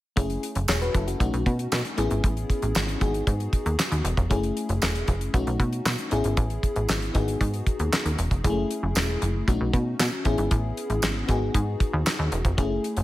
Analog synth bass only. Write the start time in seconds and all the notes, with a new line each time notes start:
0.17 F#1
0.56 F#1
0.69 E1
0.95 F#1
1.20 B1
1.34 B1
1.46 B2
1.72 B2
1.98 A1
2.11 G#1
2.24 A1
2.63 A1
2.75 G#1
3.01 G#1
3.27 G#2
3.66 D#2
3.92 D#2
4.04 E1
4.18 F1
4.31 F#1
4.69 F#1
4.82 E1
5.08 F#1
5.34 B1
5.47 B1
5.60 B2
5.86 B2
6.12 A1
6.25 G#1
6.37 A1
6.76 A1
6.89 G#1
7.15 G#1
7.41 G#2
7.80 D#2
8.05 D#2
8.19 E1
8.31 F1
8.45 F#1
8.83 F#1
8.96 E1
9.22 F#1
9.48 B1
9.61 B1
9.73 B2
9.99 B2
10.26 A1
10.38 G#1
10.51 A1
10.90 A1
11.03 G#1
11.29 G#1
11.55 G#2
11.93 D#2
12.19 D#2
12.32 E1
12.45 F1
12.58 F#1
12.97 F#1